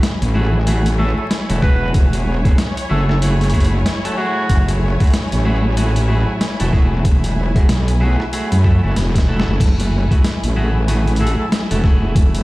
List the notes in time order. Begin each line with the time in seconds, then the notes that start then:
Already playing: F#3 E4 C#5 G#5
0.03 snare, closed hi-hat
0.22 A1, closed hi-hat
0.34 A3 E4 F#4 G#4
0.66 A3 E4 F#4 G#4, closed hi-hat
0.86 closed hi-hat
0.98 A3 E4 F#4 G#4 A4
1.17 A4
1.31 snare, closed hi-hat
1.49 E1 A3 E4 F#4 A4, closed hi-hat
1.62 E1 A3 E4 F#4 G#4 B4, kick, cross-stick
1.94 kick, closed hi-hat
2.13 closed hi-hat
2.44 A3 E4 F#4 G#4, kick, closed hi-hat
2.58 snare, closed hi-hat
2.77 closed hi-hat
2.89 F#1 A3 E4 F#4 G#4 A4
3.09 A4, cross-stick
3.21 A3 E4 F#4 G#4, closed hi-hat
3.41 closed hi-hat
3.44 closed hi-hat
3.50 E4, closed hi-hat
3.54 A3 F#4 G#4, kick, closed hi-hat
3.60 closed hi-hat
3.65 closed hi-hat
3.86 snare, closed hi-hat
4.04 A3 E4 F#4 A4, closed hi-hat
4.17 A3 E4 F#4 G#4
4.49 F#1, kick, closed hi-hat
4.68 closed hi-hat
5.00 A3 E4 F#4 G#4, kick, closed hi-hat
5.04 closed hi-hat
5.07 closed hi-hat
5.10 snare, closed hi-hat
5.14 closed hi-hat
5.23 closed hi-hat
5.28 closed hi-hat
5.32 A1, closed hi-hat
5.45 A3 E4 F#4 G#4
5.77 A3 E4 F#4 G#4, closed hi-hat
5.96 closed hi-hat
6.08 A3 E4 F#4 G#4
6.41 snare, closed hi-hat
6.59 E1 A3 E4 F#4 A4, closed hi-hat
6.72 E1 A3 E4 F#4 G#4, kick, cross-stick
7.05 kick, closed hi-hat
7.24 closed hi-hat
7.55 A3 E4 F#4 G#4, kick, closed hi-hat
7.69 B1, snare, closed hi-hat
7.88 closed hi-hat
8.00 A3 E4 F#4 G#4
8.20 cross-stick
8.32 A3 E4 F#4 G#4, closed hi-hat
8.52 F#2, closed hi-hat
8.64 A3 E4 F#4 A4, kick
8.83 F#1 A3 E4 F#4 A4
8.96 E1, snare, closed hi-hat
9.15 kick, snare, closed hi-hat
9.28 A3 E4 F#4 A4
9.40 snare
9.48 F#1
9.60 F#1 A3, kick, closed hi-hat, crash
9.80 closed hi-hat
10.11 A3 E4 F#4 G#4, kick, closed hi-hat
10.24 snare, closed hi-hat
10.43 A1, closed hi-hat
10.56 A3 E4 F#4 G#4
10.88 A3 E4 F#4 G#4, closed hi-hat
11.07 closed hi-hat
11.16 E4, closed hi-hat
11.20 A3 F#4 G#4 A4
11.27 closed hi-hat
11.38 A4
11.52 snare, closed hi-hat
11.70 E1 A3 E4 F#4 A4, closed hi-hat
11.84 E1 A3 E4 F#4 G#4, kick, cross-stick
12.16 kick, closed hi-hat
12.35 closed hi-hat